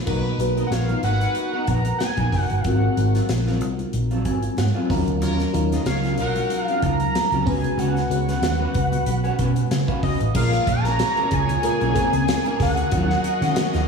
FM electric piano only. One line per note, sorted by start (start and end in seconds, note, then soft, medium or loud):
0.06 0.31 A#3 medium
0.06 0.31 B3 medium
0.06 0.31 D#4 medium
0.06 0.31 F#4 medium
0.06 0.31 B4 medium
0.39 1.31 B3 medium
0.39 1.31 D#4 medium
0.39 1.32 F#4 medium
0.39 1.31 A#4 medium
0.39 1.32 B4 medium
2.65 2.88 G#3 medium
2.65 2.89 C4 medium
2.65 2.89 F4 medium
2.65 2.89 F#4 medium
2.65 2.89 A#4 medium
2.97 3.89 G#3 medium
2.97 3.89 C4 medium
2.97 3.89 D#4 medium
2.97 3.89 F#4 medium
2.97 3.89 A#4 medium
4.25 4.55 G#5 medium
4.58 4.74 F#5 medium
4.75 5.19 F5 medium
4.89 5.42 F#3 medium
4.89 5.42 C#4 medium
4.89 5.42 D#4 medium
4.89 5.42 F4 medium
4.89 5.43 A#4 loud
5.53 6.45 F#3 medium
5.53 6.45 C#4 medium
5.53 6.45 D#4 medium
5.53 6.45 F4 medium
5.53 6.46 A#4 medium
7.45 7.98 G#3 medium
7.45 7.99 B3 medium
7.45 7.99 C#4 medium
7.45 7.53 F4 medium
7.45 7.99 B4 medium
7.53 8.02 F#4 medium
8.10 9.02 G#3 medium
8.10 9.02 B3 medium
8.10 9.02 C#4 medium
8.10 9.02 F#4 medium
8.10 9.03 B4 medium
8.74 9.04 B5 medium
9.06 9.23 B5 medium
9.24 9.38 G#5 medium
9.39 9.69 F#5 medium
9.71 9.87 G#5 medium
9.89 10.02 F5 medium
10.03 10.33 D#5 medium
10.34 11.26 G#3 medium
10.34 11.26 A#3 medium
10.34 11.26 C#4 medium
10.34 11.27 F4 medium
10.34 11.27 A#4 medium
11.63 11.87 G#3 medium
11.63 11.87 A#3 medium
11.63 11.87 C#4 medium
11.63 11.88 F4 medium
11.63 11.88 A#4 medium
11.94 12.64 G#3 medium
11.94 12.64 A#3 medium
11.94 12.02 C4 soft
11.94 12.64 F4 medium
11.94 12.64 A#4 medium
12.01 12.67 C#4 medium
12.91 12.99 F3 medium
12.91 13.83 C#4 medium
12.91 13.84 D#4 medium
12.91 13.84 F#4 medium
12.91 13.84 A#4 medium
12.98 13.87 F#3 medium